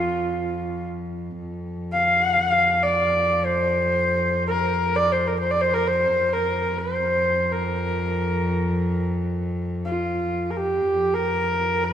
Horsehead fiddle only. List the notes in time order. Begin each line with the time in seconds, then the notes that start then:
Already playing: F4
1.93 F5
2.82 D5
3.45 C5
4.48 A#4
4.96 D5
5.12 C5
5.27 A#4
5.40 C5
5.51 D5
5.61 C5
5.74 A#4
5.87 C5
6.33 A#4
6.78 C5
7.52 A#4
9.85 F4
10.51 A#4
10.57 G4
11.14 A#4
11.84 C5